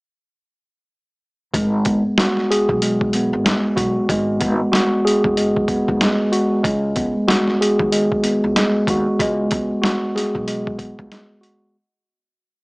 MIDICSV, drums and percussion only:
0, 0, Header, 1, 2, 480
1, 0, Start_track
1, 0, Key_signature, 5, "minor"
1, 0, Tempo, 638298
1, 1155, Time_signature, 4, 2, 24, 8
1, 9501, End_track
2, 0, Start_track
2, 0, Title_t, "Drums"
2, 1155, Note_on_c, 9, 36, 127
2, 1159, Note_on_c, 9, 42, 99
2, 1230, Note_off_c, 9, 36, 0
2, 1234, Note_off_c, 9, 42, 0
2, 1391, Note_on_c, 9, 42, 76
2, 1398, Note_on_c, 9, 36, 102
2, 1466, Note_off_c, 9, 42, 0
2, 1473, Note_off_c, 9, 36, 0
2, 1637, Note_on_c, 9, 38, 126
2, 1651, Note_on_c, 9, 42, 96
2, 1712, Note_off_c, 9, 38, 0
2, 1727, Note_off_c, 9, 42, 0
2, 1782, Note_on_c, 9, 38, 34
2, 1857, Note_off_c, 9, 38, 0
2, 1892, Note_on_c, 9, 42, 87
2, 1967, Note_off_c, 9, 42, 0
2, 2022, Note_on_c, 9, 36, 89
2, 2097, Note_off_c, 9, 36, 0
2, 2121, Note_on_c, 9, 42, 97
2, 2196, Note_off_c, 9, 42, 0
2, 2265, Note_on_c, 9, 36, 94
2, 2340, Note_off_c, 9, 36, 0
2, 2355, Note_on_c, 9, 42, 73
2, 2431, Note_off_c, 9, 42, 0
2, 2601, Note_on_c, 9, 38, 117
2, 2601, Note_on_c, 9, 42, 99
2, 2676, Note_off_c, 9, 38, 0
2, 2676, Note_off_c, 9, 42, 0
2, 2834, Note_on_c, 9, 36, 95
2, 2839, Note_on_c, 9, 42, 76
2, 2909, Note_off_c, 9, 36, 0
2, 2914, Note_off_c, 9, 42, 0
2, 3076, Note_on_c, 9, 36, 124
2, 3081, Note_on_c, 9, 42, 101
2, 3151, Note_off_c, 9, 36, 0
2, 3156, Note_off_c, 9, 42, 0
2, 3313, Note_on_c, 9, 42, 75
2, 3318, Note_on_c, 9, 36, 105
2, 3388, Note_off_c, 9, 42, 0
2, 3394, Note_off_c, 9, 36, 0
2, 3558, Note_on_c, 9, 38, 124
2, 3572, Note_on_c, 9, 42, 94
2, 3633, Note_off_c, 9, 38, 0
2, 3647, Note_off_c, 9, 42, 0
2, 3814, Note_on_c, 9, 42, 88
2, 3889, Note_off_c, 9, 42, 0
2, 3943, Note_on_c, 9, 36, 92
2, 4018, Note_off_c, 9, 36, 0
2, 4040, Note_on_c, 9, 42, 99
2, 4115, Note_off_c, 9, 42, 0
2, 4185, Note_on_c, 9, 36, 94
2, 4260, Note_off_c, 9, 36, 0
2, 4272, Note_on_c, 9, 36, 99
2, 4274, Note_on_c, 9, 42, 75
2, 4347, Note_off_c, 9, 36, 0
2, 4349, Note_off_c, 9, 42, 0
2, 4423, Note_on_c, 9, 36, 101
2, 4499, Note_off_c, 9, 36, 0
2, 4519, Note_on_c, 9, 38, 119
2, 4519, Note_on_c, 9, 42, 96
2, 4594, Note_off_c, 9, 38, 0
2, 4594, Note_off_c, 9, 42, 0
2, 4758, Note_on_c, 9, 42, 79
2, 4833, Note_off_c, 9, 42, 0
2, 4995, Note_on_c, 9, 36, 122
2, 4999, Note_on_c, 9, 42, 97
2, 5070, Note_off_c, 9, 36, 0
2, 5074, Note_off_c, 9, 42, 0
2, 5232, Note_on_c, 9, 42, 75
2, 5238, Note_on_c, 9, 36, 103
2, 5307, Note_off_c, 9, 42, 0
2, 5313, Note_off_c, 9, 36, 0
2, 5478, Note_on_c, 9, 38, 126
2, 5492, Note_on_c, 9, 42, 97
2, 5553, Note_off_c, 9, 38, 0
2, 5567, Note_off_c, 9, 42, 0
2, 5622, Note_on_c, 9, 38, 34
2, 5697, Note_off_c, 9, 38, 0
2, 5731, Note_on_c, 9, 42, 91
2, 5807, Note_off_c, 9, 42, 0
2, 5861, Note_on_c, 9, 36, 91
2, 5937, Note_off_c, 9, 36, 0
2, 5959, Note_on_c, 9, 42, 104
2, 6034, Note_off_c, 9, 42, 0
2, 6104, Note_on_c, 9, 36, 96
2, 6179, Note_off_c, 9, 36, 0
2, 6193, Note_on_c, 9, 42, 77
2, 6269, Note_off_c, 9, 42, 0
2, 6438, Note_on_c, 9, 38, 120
2, 6438, Note_on_c, 9, 42, 95
2, 6513, Note_off_c, 9, 38, 0
2, 6513, Note_off_c, 9, 42, 0
2, 6672, Note_on_c, 9, 36, 99
2, 6677, Note_on_c, 9, 42, 76
2, 6748, Note_off_c, 9, 36, 0
2, 6752, Note_off_c, 9, 42, 0
2, 6914, Note_on_c, 9, 36, 127
2, 6918, Note_on_c, 9, 42, 100
2, 6990, Note_off_c, 9, 36, 0
2, 6993, Note_off_c, 9, 42, 0
2, 7150, Note_on_c, 9, 42, 76
2, 7157, Note_on_c, 9, 36, 102
2, 7225, Note_off_c, 9, 42, 0
2, 7232, Note_off_c, 9, 36, 0
2, 7396, Note_on_c, 9, 38, 123
2, 7410, Note_on_c, 9, 42, 93
2, 7471, Note_off_c, 9, 38, 0
2, 7485, Note_off_c, 9, 42, 0
2, 7640, Note_on_c, 9, 38, 42
2, 7652, Note_on_c, 9, 42, 93
2, 7715, Note_off_c, 9, 38, 0
2, 7728, Note_off_c, 9, 42, 0
2, 7782, Note_on_c, 9, 36, 91
2, 7857, Note_off_c, 9, 36, 0
2, 7879, Note_on_c, 9, 42, 104
2, 7954, Note_off_c, 9, 42, 0
2, 8025, Note_on_c, 9, 36, 98
2, 8100, Note_off_c, 9, 36, 0
2, 8112, Note_on_c, 9, 36, 101
2, 8114, Note_on_c, 9, 42, 76
2, 8187, Note_off_c, 9, 36, 0
2, 8189, Note_off_c, 9, 42, 0
2, 8263, Note_on_c, 9, 36, 100
2, 8339, Note_off_c, 9, 36, 0
2, 8360, Note_on_c, 9, 38, 113
2, 8360, Note_on_c, 9, 42, 99
2, 8435, Note_off_c, 9, 38, 0
2, 8435, Note_off_c, 9, 42, 0
2, 8598, Note_on_c, 9, 42, 77
2, 8673, Note_off_c, 9, 42, 0
2, 9501, End_track
0, 0, End_of_file